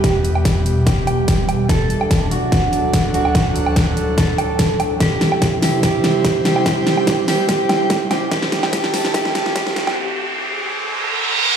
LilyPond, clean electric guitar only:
\new Staff \with { instrumentName = "Clean electric guitar" } { \time 4/4 \key c \lydian \tempo 4 = 145 g'8 r4. g'2 | a'4. fis'2 fis'8 | r2 a'2 | g'4. g'8 g'4. g'8 |
g'4. g'8 g'4. g'8 | g'4 g'4 g'4 g'4 | r1 | }